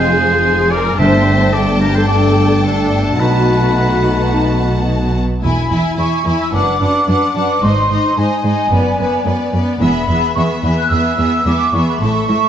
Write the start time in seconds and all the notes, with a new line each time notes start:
Already playing: F1 F2 F4 G#4 C5 G#5
0.71 A#4 D5
0.98 G1 G2 A3 D4 C5 E5 G5 A5
1.53 A3 D4 A4 D5
1.81 G4 A#4
1.95 A4 C5
2.07 A3 D4 A4 D5 A5
2.64 A3 D4 A4
3.19 B1 B2 A3 D#4 F#4 B4 F#5 A5
4.32 D#4 A5
5.44 E1 E2 E4 E5 G#5 B5
5.71 E2 E4 E5 G#5
5.98 E2 E4 E5 G#5 C#6
6.26 E2 E4 E5 G#5 B5
6.41 E6
6.53 F#1 F#2 D4 B4 F#5 D6
6.81 F#2 D4 B4 F#5
7.08 F#2 D4 B4 F#5 D6
7.35 F#2 D4 B4 F#5
7.62 G#1 G#2 D#4 C5 D#5 C6
7.89 G#2 D#4 C5 D#5
8.17 G#2 D#4 C5 D#5 G#5
8.44 G#2 D#4 C5 D#5
8.72 F#1 F#2 B3 B4 D5
8.99 F#2 B3 B4 D5
9.26 F#2 B3 B4 D5
9.53 F#2 B3 B4 D5
9.81 E1 E2 B3 G#4 E5 B5
10.08 E2 B3 G#4 E5
10.36 E2 B3 G#4 E5 C#6
10.62 E2 B3 G#4 E5 B5
10.77 F#6
10.90 E2 B3 G#4 E5 E6
11.18 E2 B3 G#4 E5
11.46 E2 B3 G#4 E5 D6
11.73 E2 B3 G#4 E5 C#6
11.88 B5
12.01 A1 A2 A3 A4 E5 C#6
12.28 A2 A3 A4 E5